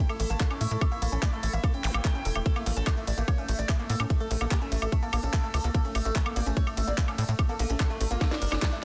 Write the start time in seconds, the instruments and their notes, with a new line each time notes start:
Already playing: synth drone A3 E4
0.09 synth arpeggio sound A3, analog synth lead A4, closed hi-hat, high woodblock
0.20 analog synth bass A1, synth arpeggio sound A3, analog synth lead A4, open hi-hat, ride
0.30 analog synth bass A1, synth arpeggio sound A#3, analog synth lead A5, closed hi-hat
0.40 synth arpeggio sound A#3, analog synth lead A4, kick, clap, closed hi-hat, ride
0.51 synth arpeggio sound C#4, analog synth lead A4, closed hi-hat, high woodblock
0.61 analog synth bass A2, synth arpeggio sound A3, analog synth lead E5, open hi-hat, ride
0.71 analog synth bass A2, synth arpeggio sound A3, analog synth lead A4, closed hi-hat
0.81 synth arpeggio sound A3, analog synth lead A4, kick, closed hi-hat, ride, high woodblock
0.92 synth arpeggio sound A#3, analog synth lead E5, closed hi-hat
1.02 analog synth bass A#1, synth arpeggio sound A#3, analog synth lead A4, open hi-hat, ride
1.12 analog synth bass A#1, synth arpeggio sound C#4, analog synth lead A4, closed hi-hat
1.22 synth arpeggio sound A3, analog synth lead D5, kick, clap, closed hi-hat, ride, high woodblock
1.33 synth arpeggio sound A3, analog synth lead A4, closed hi-hat
1.43 analog synth bass A1, synth arpeggio sound A3, analog synth lead A4, open hi-hat, ride
1.53 analog synth bass A1, synth arpeggio sound A#3, analog synth lead E5, closed hi-hat
1.64 synth arpeggio sound A#3, analog synth lead A4, kick, closed hi-hat, ride, high woodblock
1.74 synth arpeggio sound C#4, analog synth lead G5, closed hi-hat
1.84 analog synth bass A1, synth arpeggio sound A#3, clap, open hi-hat, ride, zap
1.94 analog synth bass A1, synth arpeggio sound A#3, closed hi-hat, high woodblock
2.05 synth arpeggio sound A3, kick, clap, closed hi-hat, ride
2.15 synth arpeggio sound C#4, closed hi-hat
2.25 analog synth bass E1, synth arpeggio sound A4, open hi-hat, ride
2.35 analog synth bass E1, synth arpeggio sound A3, closed hi-hat, high woodblock
2.46 synth arpeggio sound A3, analog synth lead A4, synth drone A4, kick, closed hi-hat, ride
2.56 analog synth lead A3, synth arpeggio sound A#3, closed hi-hat, high woodblock
2.66 analog synth bass A1, analog synth lead A3, synth arpeggio sound A#3, open hi-hat, ride
2.77 analog synth bass A1, synth arpeggio sound C#4, analog synth lead A4, closed hi-hat
2.87 synth arpeggio sound A3, analog synth lead A3, kick, clap, closed hi-hat, ride, high woodblock
2.97 synth arpeggio sound A3, analog synth lead A3, closed hi-hat
3.07 analog synth bass A1, synth arpeggio sound A3, analog synth lead D5, open hi-hat, ride
3.18 analog synth bass A1, analog synth lead A3, synth arpeggio sound A#3, closed hi-hat
3.28 synth arpeggio sound A#3, analog synth lead C#5, kick, closed hi-hat, ride, high woodblock
3.38 analog synth lead A3, synth arpeggio sound C#4, closed hi-hat
3.48 analog synth bass A1, synth arpeggio sound A3, analog synth lead A3, open hi-hat, ride
3.59 analog synth bass A1, synth arpeggio sound A3, analog synth lead D5, closed hi-hat
3.69 synth arpeggio sound A3, analog synth lead A3, kick, clap, closed hi-hat, ride, high woodblock
3.79 analog synth lead A3, synth arpeggio sound A#3, closed hi-hat
3.90 analog synth bass A2, synth arpeggio sound A#3, analog synth lead A4, open hi-hat, ride
4.00 analog synth bass A2, analog synth lead A3, synth arpeggio sound C#4, closed hi-hat, high woodblock
4.10 analog synth lead A3, synth arpeggio sound A3, kick, closed hi-hat, ride
4.20 synth arpeggio sound A3, analog synth lead A4, closed hi-hat
4.31 analog synth bass A#1, synth arpeggio sound A3, analog synth lead A3, open hi-hat, ride
4.41 analog synth bass A#1, analog synth lead A3, synth arpeggio sound A#3, closed hi-hat, high woodblock
4.51 synth arpeggio sound A#3, analog synth lead G4, kick, clap, closed hi-hat, ride
4.61 analog synth lead A3, synth arpeggio sound C#4, closed hi-hat
4.72 analog synth bass A1, synth arpeggio sound A3, analog synth lead A3, open hi-hat, ride
4.82 analog synth bass A1, synth arpeggio sound A3, analog synth lead A4, closed hi-hat, high woodblock
4.92 synth arpeggio sound A3, analog synth lead A3, kick, closed hi-hat, ride
5.03 synth arpeggio sound A#3, analog synth lead A4, closed hi-hat
5.13 analog synth bass A#1, synth arpeggio sound A#3, open hi-hat, ride, high woodblock
5.23 analog synth bass A#1, synth arpeggio sound C#4, closed hi-hat
5.33 synth arpeggio sound A3, kick, clap, closed hi-hat, ride
5.44 synth arpeggio sound A3, closed hi-hat
5.54 analog synth bass C#2, synth arpeggio sound A3, open hi-hat, ride, high woodblock
5.64 analog synth bass C#2, synth arpeggio sound A#3, closed hi-hat
5.74 synth arpeggio sound A#3, analog synth lead A4, kick, closed hi-hat, ride
5.85 analog synth lead A3, synth arpeggio sound C#4, closed hi-hat
5.95 analog synth bass A1, synth arpeggio sound A3, analog synth lead A3, open hi-hat, ride, high woodblock
6.05 analog synth bass A1, synth arpeggio sound A3, analog synth lead A4, closed hi-hat
6.16 synth arpeggio sound A3, analog synth lead A3, kick, clap, closed hi-hat, ride
6.26 analog synth lead A3, synth arpeggio sound A#3, closed hi-hat, high woodblock
6.36 analog synth bass A1, synth arpeggio sound A#3, analog synth lead D5, open hi-hat, ride
6.46 analog synth bass A1, analog synth lead A3, synth arpeggio sound C#4, closed hi-hat
6.57 synth arpeggio sound A3, analog synth lead C#5, kick, closed hi-hat, ride
6.67 synth arpeggio sound A3, analog synth lead A3, closed hi-hat, high woodblock
6.77 analog synth bass A1, synth arpeggio sound A3, analog synth lead A3, open hi-hat, ride
6.88 analog synth bass A1, synth arpeggio sound A#3, analog synth lead D5, closed hi-hat
6.98 analog synth lead A3, synth arpeggio sound A#3, kick, clap, closed hi-hat, ride
7.08 analog synth lead A3, synth arpeggio sound C#4, closed hi-hat, high woodblock
7.18 analog synth bass A2, synth arpeggio sound A3, analog synth lead A4, open hi-hat, ride
7.29 analog synth bass A2, synth arpeggio sound A3, analog synth lead A3, closed hi-hat
7.39 synth arpeggio sound A3, analog synth lead A3, kick, closed hi-hat, ride, high woodblock
7.49 synth arpeggio sound A#3, analog synth lead A4, closed hi-hat
7.59 analog synth bass A#1, analog synth lead A3, synth arpeggio sound A#3, open hi-hat, ride
7.70 analog synth bass A#1, analog synth lead A3, synth arpeggio sound C#4, closed hi-hat
7.80 synth arpeggio sound A3, analog synth lead A4, kick, clap, closed hi-hat, ride, high woodblock
7.90 analog synth lead A3, synth arpeggio sound A3, closed hi-hat
8.01 analog synth bass A1, analog synth lead A3, synth arpeggio sound A3, open hi-hat, ride
8.11 analog synth bass A1, synth arpeggio sound A#3, analog synth lead F4, closed hi-hat
8.21 analog synth lead A3, synth arpeggio sound A#3, kick, snare, closed hi-hat, ride, high woodblock
8.31 synth arpeggio sound C#4, analog synth lead D4, snare, closed hi-hat
8.42 analog synth bass G1, synth arpeggio sound A#4, open hi-hat, ride
8.52 analog synth bass G1, synth arpeggio sound C#4, snare, closed hi-hat, high woodblock
8.62 synth arpeggio sound G3, kick, snare, clap, closed hi-hat, ride
8.72 synth arpeggio sound A3, closed hi-hat